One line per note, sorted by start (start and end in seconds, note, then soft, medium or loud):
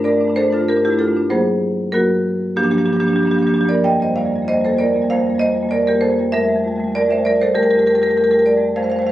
0.00 0.07 G2 medium
0.00 0.08 A3 soft
0.04 0.18 G2 medium
0.04 0.17 A3 soft
0.04 0.13 D4 soft
0.04 0.34 A#4 medium
0.04 0.34 D5 medium
0.13 0.24 A3 soft
0.13 0.21 D4 soft
0.18 0.28 G2 medium
0.18 0.30 D4 soft
0.24 0.38 G2 medium
0.24 0.32 A3 medium
0.30 0.40 A3 soft
0.30 0.37 D4 soft
0.36 0.50 G2 medium
0.36 0.45 D4 soft
0.36 0.51 A4 medium
0.36 0.51 C5 medium
0.40 0.48 A3 soft
0.45 0.57 A3 soft
0.45 0.53 D4 soft
0.50 0.60 G2 medium
0.50 0.62 D4 soft
0.50 0.67 F4 medium
0.50 0.67 A4 medium
0.57 0.70 G2 medium
0.57 0.65 A3 medium
0.62 0.73 A3 soft
0.62 0.70 D4 soft
0.68 0.81 G2 medium
0.68 0.77 D4 soft
0.68 0.83 G4 medium
0.68 0.83 A#4 medium
0.73 0.82 A3 soft
0.73 0.85 D4 soft
0.81 0.92 G2 medium
0.81 0.90 A3 soft
0.81 0.99 G4 medium
0.85 0.93 D4 soft
0.85 0.99 E4 medium
0.90 1.03 G2 medium
0.90 0.98 A3 medium
0.90 1.01 D4 soft
0.98 1.07 A3 soft
0.98 1.08 D4 soft
0.98 1.29 F4 medium
0.98 1.29 A4 medium
1.03 1.13 G2 medium
1.07 1.17 A3 soft
1.07 1.17 D4 soft
1.13 1.26 G2 medium
1.13 1.26 A3 soft
1.13 1.25 D4 soft
1.30 1.92 G2 medium
1.30 1.91 F#3 medium
1.30 1.91 A#3 medium
1.30 1.90 G#4 medium
1.30 1.91 C5 medium
1.92 2.54 G2 medium
1.92 2.54 F#3 medium
1.92 2.54 A#3 medium
1.92 2.53 F#4 medium
1.92 2.53 A#4 medium
2.56 2.66 G2 medium
2.56 2.65 F3 medium
2.56 2.64 A#3 medium
2.56 2.64 D4 medium
2.56 2.63 G4 medium
2.63 2.77 G2 medium
2.63 2.72 F3 soft
2.63 2.71 A#3 soft
2.63 2.72 D4 medium
2.63 2.71 G4 medium
2.71 2.80 F3 soft
2.71 2.78 A#3 medium
2.71 2.79 D4 medium
2.71 2.78 G4 medium
2.77 2.87 G2 medium
2.77 2.87 F3 soft
2.77 2.85 A#3 soft
2.77 2.86 D4 medium
2.77 2.86 G4 medium
2.85 2.97 G2 medium
2.85 2.95 F3 soft
2.85 2.92 A#3 soft
2.85 2.93 D4 medium
2.85 2.93 G4 medium
2.92 3.02 F3 soft
2.92 3.01 A#3 soft
2.92 3.00 D4 medium
2.92 3.00 G4 medium
2.97 3.07 G2 medium
2.97 3.07 D4 medium
2.97 3.08 G4 medium
3.01 3.09 F3 soft
3.01 3.09 A#3 medium
3.07 3.17 G2 medium
3.07 3.18 F3 soft
3.07 3.17 A#3 soft
3.07 3.13 D4 medium
3.07 3.16 G4 medium
3.13 3.27 G2 medium
3.13 3.25 A#3 soft
3.13 3.20 D4 medium
3.13 3.23 G4 medium
3.18 3.27 F3 soft
3.18 3.27 D4 medium
3.23 3.35 G2 medium
3.23 3.36 F3 soft
3.23 3.33 A#3 soft
3.23 3.31 G4 medium
3.27 3.35 D4 medium
3.31 3.41 A#3 soft
3.31 3.43 D4 medium
3.31 3.39 G4 medium
3.35 3.46 G2 medium
3.35 3.45 F3 soft
3.35 3.47 G4 medium
3.41 3.54 F3 soft
3.41 3.49 A#3 soft
3.41 3.49 D4 medium
3.46 3.54 G2 medium
3.46 3.58 A#3 medium
3.46 3.56 D4 medium
3.46 3.54 G4 medium
3.54 3.66 G2 medium
3.54 3.61 F3 soft
3.54 3.65 A#3 soft
3.54 3.64 D4 medium
3.54 3.61 G4 medium
3.61 3.70 F3 soft
3.61 3.64 G4 medium
3.65 3.74 G2 medium
3.65 3.73 A#3 soft
3.65 3.84 D5 medium
3.70 3.80 F3 soft
3.70 3.80 A#3 soft
3.70 3.84 A#4 medium
3.74 3.80 G2 medium
3.84 3.95 F2 medium
3.84 3.92 G3 medium
3.84 3.92 A#3 medium
3.84 4.00 D#5 medium
3.84 4.00 G5 loud
3.92 4.04 F2 medium
3.92 4.00 G3 soft
3.92 4.01 A#3 soft
4.00 4.09 G3 soft
4.00 4.09 A#3 soft
4.00 4.17 C5 medium
4.00 4.17 D#5 medium
4.04 4.15 F2 medium
4.09 4.18 G3 soft
4.09 4.16 A#3 soft
4.15 4.25 F2 medium
4.15 4.26 G3 soft
4.15 4.25 A#3 soft
4.15 4.46 D5 medium
4.15 4.46 F5 medium
4.25 4.35 F2 medium
4.25 4.35 G3 soft
4.25 4.34 A#3 soft
4.34 4.45 F2 medium
4.34 4.44 G3 soft
4.34 4.42 A#3 soft
4.42 4.54 F2 medium
4.42 4.52 G3 soft
4.42 4.49 A#3 soft
4.48 4.57 A#3 soft
4.48 4.63 C5 medium
4.48 4.63 D#5 loud
4.52 4.65 F2 medium
4.52 4.61 G3 soft
4.57 4.64 A#3 soft
4.61 4.74 F2 medium
4.61 4.69 G3 soft
4.61 4.73 A#3 soft
4.61 4.79 C5 medium
4.66 4.77 G3 soft
4.66 4.79 A4 medium
4.73 4.84 F2 medium
4.73 4.86 G3 soft
4.73 4.80 A#3 soft
4.79 4.88 A#3 soft
4.79 5.08 A#4 medium
4.79 5.08 D5 medium
4.84 4.94 F2 medium
4.84 4.93 G3 soft
4.88 4.96 A#3 soft
4.93 5.04 F2 medium
4.93 5.02 G3 soft
4.93 5.04 A#3 soft
5.02 5.13 F2 medium
5.02 5.10 G3 soft
5.02 5.12 A#3 soft
5.10 5.24 F2 medium
5.10 5.19 G3 soft
5.10 5.21 A#3 soft
5.10 5.39 C5 medium
5.10 5.39 F5 loud
5.19 5.27 G3 soft
5.19 5.30 A#3 soft
5.24 5.35 F2 medium
5.24 5.35 G3 soft
5.30 5.38 A#3 soft
5.35 5.44 F2 medium
5.35 5.43 G3 soft
5.35 5.46 A#3 soft
5.39 5.70 C5 medium
5.39 5.70 D#5 loud
5.43 5.54 F2 medium
5.43 5.52 G3 soft
5.43 5.54 A#3 soft
5.52 5.65 F2 medium
5.52 5.60 G3 soft
5.52 5.63 A#3 soft
5.60 5.69 G3 soft
5.60 5.71 A#3 soft
5.65 5.72 F2 medium
5.69 5.83 F2 medium
5.69 5.77 G3 soft
5.69 5.79 A#3 soft
5.69 5.86 A#4 medium
5.69 5.87 D5 medium
5.77 5.86 G3 soft
5.77 5.88 A#3 soft
5.83 5.92 F2 medium
5.83 5.94 G3 soft
5.87 5.96 A#3 soft
5.87 6.02 G4 medium
5.87 6.02 A#4 medium
5.92 6.02 F2 medium
5.92 6.02 G3 soft
5.96 6.04 A#3 soft
6.01 6.11 F2 medium
6.01 6.10 G3 soft
6.01 6.12 A#3 soft
6.01 6.31 A4 medium
6.01 6.31 C5 medium
6.10 6.20 F2 medium
6.10 6.19 G3 soft
6.10 6.20 A#3 soft
6.19 6.29 F2 medium
6.19 6.29 G3 soft
6.19 6.29 A#3 soft
6.32 6.44 F2 medium
6.32 6.41 G3 medium
6.32 6.41 A3 medium
6.32 6.91 A#4 medium
6.32 6.92 E5 loud
6.41 6.56 F2 medium
6.41 6.50 G3 soft
6.41 6.48 A3 soft
6.48 6.59 G3 soft
6.48 6.55 A3 soft
6.55 6.66 F2 medium
6.55 6.68 G3 soft
6.55 6.64 A3 soft
6.64 6.77 F2 medium
6.64 6.72 A3 soft
6.68 6.76 G3 soft
6.72 6.84 G3 soft
6.72 6.80 A3 soft
6.77 6.87 F2 medium
6.77 6.89 A3 soft
6.84 6.98 F2 medium
6.84 6.92 G3 soft
6.89 7.01 G3 soft
6.89 6.98 A3 soft
6.95 7.09 F2 medium
6.95 7.06 A3 soft
6.95 7.10 A#4 medium
6.95 7.10 D5 medium
7.01 7.09 G3 soft
7.06 7.19 F2 medium
7.06 7.18 G3 soft
7.06 7.15 A3 soft
7.11 7.25 C5 medium
7.11 7.25 E5 medium
7.15 7.30 F2 medium
7.15 7.26 G3 soft
7.15 7.24 A3 soft
7.24 7.35 G3 soft
7.24 7.32 A3 soft
7.24 7.40 A#4 medium
7.24 7.40 D5 medium
7.30 7.40 F2 medium
7.30 7.41 A3 soft
7.35 7.43 G3 soft
7.40 7.51 F2 medium
7.40 7.51 G3 soft
7.40 7.51 A3 soft
7.40 7.56 A4 medium
7.40 7.56 C5 medium
7.55 7.65 F2 medium
7.55 7.64 G3 medium
7.55 7.63 A3 medium
7.55 7.63 G4 medium
7.55 7.63 A#4 loud
7.63 7.75 F2 medium
7.63 7.73 G3 soft
7.63 7.72 A3 soft
7.63 7.71 G4 medium
7.63 7.71 A#4 medium
7.71 7.83 G3 medium
7.71 7.81 A3 medium
7.71 7.79 G4 medium
7.71 7.79 A#4 medium
7.75 7.87 F2 medium
7.75 7.87 G4 medium
7.75 7.87 A#4 medium
7.81 7.91 G3 soft
7.81 7.89 A3 soft
7.87 7.97 F2 medium
7.87 7.97 A3 soft
7.87 7.95 G4 medium
7.87 7.95 A#4 medium
7.91 7.99 G3 medium
7.91 8.02 G4 medium
7.95 8.07 F2 medium
7.95 8.08 G3 soft
7.95 8.06 A3 medium
7.95 8.03 A#4 medium
8.02 8.14 A3 medium
8.02 8.09 G4 medium
8.02 8.11 A#4 medium
8.07 8.18 F2 medium
8.07 8.18 G3 medium
8.07 8.17 G4 medium
8.07 8.18 A#4 medium
8.14 8.26 G3 soft
8.14 8.23 A3 soft
8.14 8.24 G4 medium
8.14 8.24 A#4 medium
8.18 8.30 F2 medium
8.23 8.34 G3 medium
8.23 8.31 A3 soft
8.23 8.33 G4 medium
8.23 8.31 A#4 medium
8.30 8.38 F2 medium
8.30 8.40 A3 soft
8.30 8.42 G4 medium
8.30 8.39 A#4 medium
8.34 8.48 F2 medium
8.34 8.43 G3 soft
8.39 8.51 G3 medium
8.39 8.48 A3 medium
8.39 8.42 A#4 medium
8.46 8.57 F2 medium
8.46 8.57 A3 soft
8.46 8.75 A#4 medium
8.46 8.75 D5 medium
8.51 8.60 G3 soft
8.57 8.72 F2 medium
8.57 8.72 G3 medium
8.57 8.65 A3 medium
8.65 8.72 A3 soft
8.76 8.86 F2 medium
8.76 8.84 G3 medium
8.76 8.84 A3 medium
8.76 8.83 C5 medium
8.76 8.84 F5 medium
8.83 8.96 F2 soft
8.83 8.91 G3 soft
8.83 8.92 A3 soft
8.83 8.90 C5 medium
8.83 8.92 F5 medium
8.90 9.00 G3 medium
8.90 8.99 A3 soft
8.90 8.96 C5 medium
8.90 8.99 F5 medium
8.96 9.07 F2 medium
8.96 9.07 G3 soft
8.96 9.07 A3 soft
8.96 9.02 C5 medium
8.96 9.07 F5 medium
9.02 9.12 C5 medium
9.07 9.12 F2 medium
9.07 9.12 G3 medium
9.07 9.12 A3 medium
9.07 9.12 F5 medium